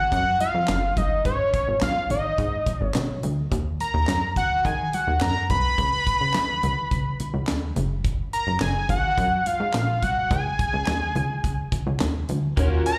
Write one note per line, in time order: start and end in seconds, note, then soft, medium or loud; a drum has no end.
0.00 0.10 F#5 medium
0.12 0.35 F#2 loud
0.12 0.38 F#5 loud
0.12 kick medium
0.12 closed hi-hat medium
0.12 muted conga soft
0.40 0.99 F5 loud
0.40 closed hi-hat medium
0.40 muted conga soft
0.54 0.66 F2 medium
0.68 0.92 F#1 medium
0.68 snare loud
0.68 clap medium
0.68 closed hi-hat medium
0.68 high conga medium
0.96 1.20 G1 medium
0.96 1.25 D#5 medium
0.96 kick medium
0.96 closed hi-hat medium
0.96 high conga medium
1.25 1.49 G#1 loud
1.25 1.78 C#5 loud
1.25 kick medium
1.25 closed hi-hat medium
1.54 kick loud
1.54 closed hi-hat medium
1.54 muted conga soft
1.68 1.79 G#1 medium
1.81 2.05 B1 medium
1.81 2.09 F5 medium
1.81 snare loud
1.81 clap medium
1.81 closed hi-hat medium
1.81 high conga medium
2.10 2.34 G#1 medium
2.10 2.86 D#5 medium
2.10 closed hi-hat medium
2.10 low conga medium
2.38 2.62 G#2 loud
2.38 kick loud
2.38 closed hi-hat medium
2.38 muted conga soft
2.66 kick loud
2.66 closed hi-hat medium
2.66 muted conga soft
2.66 low conga medium
2.81 2.93 G#1 medium
2.86 3.20 C#5 medium
2.94 3.19 B1 loud
2.94 snare loud
2.94 clap medium
2.94 closed hi-hat medium
2.94 high conga medium
3.23 3.47 D2 medium
3.23 closed hi-hat medium
3.23 high conga medium
3.52 3.75 D#2 medium
3.52 kick medium
3.52 closed hi-hat medium
3.80 4.33 A#5 loud
3.80 closed hi-hat medium
3.80 muted conga soft
3.94 4.06 D#2 medium
4.07 4.38 F#2 medium
4.07 snare medium
4.07 clap medium
4.07 closed hi-hat medium
4.07 high conga medium
4.36 4.60 D#2 medium
4.36 4.67 F#5 medium
4.36 kick medium
4.36 closed hi-hat medium
4.36 low conga medium
4.65 4.88 D#3 loud
4.65 4.95 G#5 medium
4.65 kick medium
4.65 closed hi-hat medium
4.65 muted conga soft
4.93 5.21 F#5 medium
4.93 closed hi-hat medium
4.93 muted conga medium
5.07 5.19 D#2 medium
5.21 5.45 F#2 loud
5.21 5.48 A#5 loud
5.21 snare loud
5.21 clap medium
5.21 closed hi-hat medium
5.21 high conga medium
5.50 5.73 C2 medium
5.50 7.72 B5 loud
5.50 kick medium
5.50 closed hi-hat medium
5.50 high conga medium
5.78 6.02 C#2 loud
5.78 kick loud
5.78 closed hi-hat medium
6.07 kick medium
6.07 closed hi-hat medium
6.07 muted conga soft
6.21 6.36 C#2 medium
6.34 6.58 D#2 medium
6.34 snare medium
6.34 clap medium
6.34 closed hi-hat medium
6.34 high conga medium
6.63 6.93 C#2 medium
6.63 closed hi-hat medium
6.63 low conga medium
6.91 7.15 C#3 loud
6.91 kick medium
6.91 closed hi-hat medium
6.91 muted conga soft
7.20 closed hi-hat medium
7.20 muted conga soft
7.20 low conga medium
7.34 7.49 C#2 medium
7.47 7.71 D#2 medium
7.47 snare loud
7.47 clap medium
7.47 closed hi-hat medium
7.47 high conga medium
7.76 8.23 F#1 medium
7.76 closed hi-hat medium
7.76 high conga medium
8.05 kick loud
8.05 closed hi-hat medium
8.33 8.59 A#5 loud
8.33 closed hi-hat medium
8.47 8.59 F#1 medium
8.60 8.84 F#1 medium
8.60 8.88 G#5 medium
8.60 snare medium
8.60 clap medium
8.60 closed hi-hat medium
8.60 high conga medium
8.89 9.13 G#1 medium
8.89 9.48 F#5 loud
8.89 kick medium
8.89 closed hi-hat medium
8.89 low conga medium
9.18 9.41 F#2 loud
9.18 kick loud
9.18 closed hi-hat medium
9.18 muted conga soft
9.46 10.05 F5 medium
9.46 closed hi-hat medium
9.46 muted conga soft
9.60 9.72 G#2 medium
9.74 10.04 A#1 loud
9.74 snare loud
9.74 clap medium
9.74 closed hi-hat medium
9.74 high conga medium
10.02 10.26 C2 medium
10.02 10.31 F#5 medium
10.02 kick medium
10.02 closed hi-hat medium
10.02 high conga medium
10.31 10.54 C#2 loud
10.31 11.97 G#5 loud
10.31 kick medium
10.31 closed hi-hat medium
10.59 kick loud
10.59 closed hi-hat medium
10.59 muted conga soft
10.73 10.85 C#2 medium
10.87 11.11 D#2 loud
10.87 snare medium
10.87 clap medium
10.87 closed hi-hat medium
10.87 high conga medium
11.15 11.45 C#2 medium
11.15 closed hi-hat medium
11.15 low conga medium
11.44 11.68 C#3 loud
11.44 kick medium
11.44 closed hi-hat medium
11.44 muted conga soft
11.72 kick loud
11.72 closed hi-hat medium
11.72 muted conga soft
11.72 low conga medium
11.87 11.98 C#2 medium
12.00 12.24 D#2 medium
12.00 snare loud
12.00 clap medium
12.00 closed hi-hat medium
12.00 high conga medium
12.29 12.53 D2 medium
12.29 closed hi-hat medium
12.29 high conga medium
12.56 12.81 D#2 loud
12.56 12.83 A#3 medium
12.56 12.90 C#4 medium
12.56 12.83 C#4 medium
12.56 12.90 F4 medium
12.56 12.90 F#4 medium
12.56 12.84 F#4 medium
12.56 12.90 A#4 loud
12.56 12.84 A#4 medium
12.56 kick loud
12.56 closed hi-hat medium
12.85 12.98 A#5 loud
12.85 muted clean electric guitar stroke soft
12.85 closed hi-hat medium